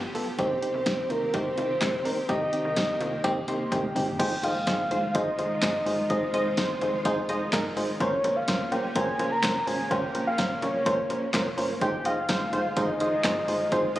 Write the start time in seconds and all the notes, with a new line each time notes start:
Already playing: F3 B3 G4
0.15 B1 B3 F4 A4, open hi-hat
0.39 C2 D#3 C4 D#4 G4 C5, kick, closed hi-hat
0.62 C4 D#4 G4, closed hi-hat
0.74 C2
0.86 C4 D#4 G4, kick, snare, closed hi-hat
1.10 C2 C4 D#4 F4 A#4, closed hi-hat
1.34 C2 C4 D#4 G4 C5, kick, closed hi-hat
1.58 C2 C4 D#4 F4, closed hi-hat
1.81 C2 C4 D#4 G4, kick, snare, clap, closed hi-hat
2.05 A#1 C4 D#4 A#4, open hi-hat
2.29 C2 A#3 C4 D#4 G4 D#5, kick, closed hi-hat
2.53 C4 D#4 G4 D#5, closed hi-hat
2.65 C2
2.76 C4 D#4 G4, kick, snare, closed hi-hat
3.00 C2 C4 D#4 F4, closed hi-hat
3.24 C2 C4 D#4 G4, kick, closed hi-hat
3.48 C2 C4 D#4 G4 C6, closed hi-hat
3.72 C2 C4 D#4 G4 G5, kick, closed hi-hat, high tom
3.96 G1 C4 D#4 G4, mid tom, open hi-hat
4.08 floor tom
4.19 F1 D#3 G#3 D#4 F4 G#4 C5 G5, kick, closed hi-hat, crash
4.43 F1 D#4 F4 G#4 C5 D#5 F5, closed hi-hat
4.67 D#4 F4 G#4 C5, kick, snare, closed hi-hat
4.91 F1 D#4 F4 G#4 C5, closed hi-hat
5.15 F1 D#4 F4 G#4 C5 D#5, kick, closed hi-hat
5.39 F1 D#4 F4 G#4 C5 D#5, closed hi-hat
5.62 G1 D#4 F4 G#4 C5, kick, snare, clap, closed hi-hat
5.86 G1 D#4 F4 G#4 C5, open hi-hat
6.10 F1 D#4 F4 G#4 C5 D#5, kick, closed hi-hat
6.34 F1 D#4 F4 G#4 C5 D#5, closed hi-hat
6.57 D#4 F4 G#4 C5 D#5, kick, snare, closed hi-hat
6.81 F1 D#4 F4 G#4 C5, closed hi-hat
7.05 F1 D#4 F4 G#4 C5, kick, closed hi-hat
7.29 F1 D#4 F4 G#4 C5 D#5, closed hi-hat
7.53 G1 D#4 F4 G#4 A#4, kick, snare, clap, closed hi-hat
7.77 G#1 D#4 F4 G#4 C5, open hi-hat
8.00 A#1 C#3 A#3 C#4 F4 A#4 C5 C#5, kick, closed hi-hat
8.24 A#1 C#4 F4 A#4 C5, closed hi-hat
8.36 F5
8.48 C#4 F4 A#4 C5, kick, snare, closed hi-hat
8.72 A#1 C#4 F4 A#4 C5 G5, closed hi-hat
8.96 A#1 C#4 F4 A#4 C5 G#5, kick, closed hi-hat
9.19 A#1 C#4 F4 A#4 C5, closed hi-hat
9.32 A#5
9.43 C2 C#4 F4 A#4 C5, kick, snare, clap, closed hi-hat
9.67 G#1 C#4 F4 A#4 C5 G#5, open hi-hat
9.91 A#1 C#4 F4 A#4 C5 G5, kick, closed hi-hat
10.15 A#1 C#4 F4 A#4 C5, closed hi-hat
10.27 F5
10.38 C#4 F4 A#4 C5, kick, snare, closed hi-hat
10.62 A#1 C#4 F4 A#4 C#5, closed hi-hat
10.86 A#1 C#4 F4 A#4 C5, kick, closed hi-hat
11.10 A#1 C#4 F4 A#4 C5, closed hi-hat
11.34 C2 C#4 F4 A#4 C5, kick, snare, clap, closed hi-hat
11.57 G1 C#4 F4 A#4 C5, open hi-hat
11.81 F1 D#3 G#3 D#4 F4 G#4 C5 G5, kick, closed hi-hat
12.05 F1 D#4 F4 G#4 C5 D#5 F5, closed hi-hat
12.29 D#4 F4 G#4 C5, kick, snare, closed hi-hat
12.53 F1 D#4 F4 G#4 C5, closed hi-hat
12.77 F1 D#4 F4 G#4 C5 D#5, kick, closed hi-hat
13.00 F1 D#4 F4 G#4 C5 D#5, closed hi-hat
13.24 G1 D#4 F4 G#4 C5, kick, snare, clap, closed hi-hat
13.48 G1 D#4 F4 G#4 C5, open hi-hat
13.72 F1 D#4 F4 G#4 C5, kick, closed hi-hat
13.96 F1 D#4 F4 G#4 C5 D#5, closed hi-hat